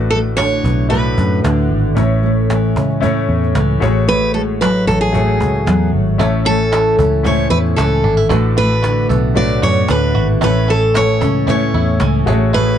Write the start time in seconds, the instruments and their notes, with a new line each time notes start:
Already playing: fingered electric bass A1, nylon-string guitar A2 A3, grand piano A3 D4 F#4 B4
0.10 nylon-string guitar A3, steel-string acoustic guitar A4
0.37 nylon-string guitar D3, steel-string acoustic guitar C#5, cajon slap
0.64 fingered electric bass B1, nylon-string guitar B3, cajon bass
0.89 nylon-string guitar A2, grand piano A3 D4 F#4 B4, steel-string acoustic guitar B4
1.05 cajon slap
1.18 fingered electric bass F#2, cajon bass
1.32 cajon slap
1.44 fingered electric bass D2, nylon-string guitar D3, cajon slap
1.58 cajon slap
1.71 fingered electric bass G#1
1.85 cajon slap
1.95 fingered electric bass A1, nylon-string guitar A2, grand piano A3 C#4 E4 C#5, cajon bass
2.11 cajon slap
2.23 nylon-string guitar A3
2.38 cajon slap
2.50 nylon-string guitar E3, cajon slap
2.76 fingered electric bass C#2, nylon-string guitar C#4, cajon bass
3.00 nylon-string guitar A2, grand piano A3 C#4 E4 C#5, cajon bass
3.29 fingered electric bass E2, cajon slap
3.43 cajon slap
3.55 fingered electric bass C#2, nylon-string guitar E3, cajon slap
3.70 cajon slap
3.80 fingered electric bass A1, nylon-string guitar A2, grand piano A3 F#4 G#4 C#5, cajon bass
4.08 nylon-string guitar A2, steel-string acoustic guitar B4
4.23 cajon slap
4.34 nylon-string guitar G#3, steel-string acoustic guitar A4
4.61 nylon-string guitar F#3, steel-string acoustic guitar B4, cajon slap
4.87 fingered electric bass A1, nylon-string guitar C#4, steel-string acoustic guitar A4, cajon bass
5.01 steel-string acoustic guitar G#4
5.12 nylon-string guitar A2, grand piano A3 F#4 G#4 C#5, cajon bass
5.40 fingered electric bass C#2, cajon bass
5.54 cajon slap
5.66 fingered electric bass E2, nylon-string guitar F#3, cajon slap
5.93 fingered electric bass G#1
6.08 cajon slap
6.18 fingered electric bass A1, nylon-string guitar A2, grand piano A3 C#4 E4 C#5, five-string banjo A3 A4, cajon bass
6.45 nylon-string guitar A3, five-string banjo C#4, steel-string acoustic guitar A4
6.72 nylon-string guitar E3, five-string banjo E4, cajon slap
6.98 fingered electric bass C#2, nylon-string guitar C#4, five-string banjo A4, cajon bass
7.23 nylon-string guitar A2, grand piano A3 C#4 E4 C5, five-string banjo C#4, steel-string acoustic guitar C#5, cajon bass
7.32 grand piano C#5
7.50 fingered electric bass E2, five-string banjo E4, steel-string acoustic guitar B4
7.65 cajon slap
7.76 fingered electric bass C#2, nylon-string guitar E3, five-string banjo C#4, steel-string acoustic guitar A4, cajon slap
8.04 fingered electric bass G#1, five-string banjo D4
8.17 five-string banjo E4
8.29 fingered electric bass A1, nylon-string guitar A2, five-string banjo D3 A4, grand piano A3 D4 F#4 B4, cajon bass
8.57 nylon-string guitar A3, five-string banjo D4, steel-string acoustic guitar B4
8.83 nylon-string guitar D3, five-string banjo F#4, cajon slap
8.99 cajon slap
9.09 fingered electric bass B1, nylon-string guitar B3, five-string banjo A4, cajon bass
9.35 nylon-string guitar A2, grand piano A3 D4 F#4 B4, five-string banjo D4, steel-string acoustic guitar D5
9.62 fingered electric bass F#2, five-string banjo F#4, steel-string acoustic guitar C#5, cajon bass
9.88 fingered electric bass D2, nylon-string guitar D3, five-string banjo D4, steel-string acoustic guitar B4, cajon slap
10.15 fingered electric bass G#1, five-string banjo F#4
10.29 cajon slap
10.41 fingered electric bass A1, nylon-string guitar A2, grand piano A3 C#4 E4 C#5, five-string banjo A3 A4, steel-string acoustic guitar B4, cajon bass
10.68 nylon-string guitar A3, five-string banjo C#4, steel-string acoustic guitar A4
10.94 nylon-string guitar E3, five-string banjo E4, steel-string acoustic guitar C#5, cajon slap
11.21 fingered electric bass C#2, nylon-string guitar C#4, five-string banjo A4, cajon bass
11.46 nylon-string guitar A2, grand piano A3 C#4 E4 B4, five-string banjo C#4, steel-string acoustic guitar C#5, cajon bass
11.55 grand piano C#5
11.74 fingered electric bass E2, five-string banjo E4, cajon slap
11.87 cajon slap
12.00 fingered electric bass C#2, nylon-string guitar E3, five-string banjo C#4, cajon slap
12.14 cajon slap
12.26 fingered electric bass A1, nylon-string guitar A2, grand piano G#3 F#4 G#4 C#5, five-string banjo A3, cajon bass
12.32 grand piano A3
12.53 nylon-string guitar A2, five-string banjo A3 G#4, steel-string acoustic guitar B4